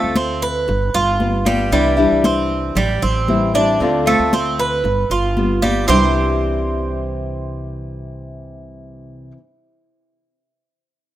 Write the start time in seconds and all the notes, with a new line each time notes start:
Already playing: A3 C4 F4
0.03 D2
0.16 C4, high conga
0.42 B4, high conga
0.68 G1, muted nylon-string guitar stroke, high conga
0.94 G1 F4, high conga
1.19 G3 B3 F4, high conga
1.45 G3 B3 F4, high conga
1.71 C2 C3 E3 G3 D4 E4, high conga
1.97 E3 G3 D4 E4, high conga
2.12 C2
2.24 C4, high conga
2.50 high conga
2.75 A1 G3, muted nylon-string guitar stroke, high conga, low conga
3.02 A1 C4, high conga, low conga
3.27 E3 G3 C4 E4, high conga
3.54 G3 C4 D4 E4
3.80 D2 D3 A3 C4 F4, high conga
4.06 A3 C4 F4, high conga
4.19 D2
4.33 C4, high conga
4.58 B4, high conga
4.84 G1, muted nylon-string guitar stroke, high conga
5.10 G1 F4, high conga
5.36 G3 B3 F4, high conga
5.62 G3 B3 F4, high conga
5.87 C2 C3 E3 G3 C4 D4 E4 G4 C5, low conga